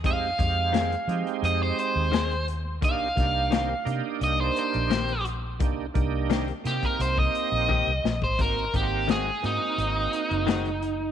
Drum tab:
HH |x-x-xxxxx-x-xxx-|x-x-x-x-x-xxxxx-|x-x-xxxxx-x-----|x-x-x-x-x-xxxxx-|
SD |----o-------o---|--o-o-------o---|----o-o-------o-|----o-o-----o---|
BD |o-o-------------|o-o-------------|o-o----o-o--o--o|o-o-------------|